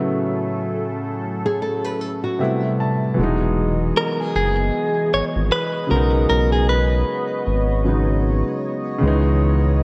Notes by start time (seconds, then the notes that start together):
Already playing: A2 C#3 F#3 A3 B3 C#4 E4 A4
1.46 G#4
1.62 A4
1.84 B4
2.01 A4
2.24 F#4
2.39 C3 G3 A3 B3 E5
2.43 E4
2.80 A5
3.14 E3 F#3 B3 G#4 D#5
3.18 E1 G#3 B3
3.23 D#4
3.97 A#4
4.20 G#4
4.35 F#1 G#4
5.13 G#1 C#5
5.36 G#1
5.52 B4
5.87 C#3 F#3 B3 C#5
5.91 B1 G#3 B3 A#4
5.96 D#4
6.30 B1 A#4
6.52 G#4
6.69 B4
7.47 G#1
7.84 C#3 F#3 G#3 B3
7.89 D#4
8.98 C#3 D#3 E3
9.03 C#2 G#3 B3
9.07 E3 D#4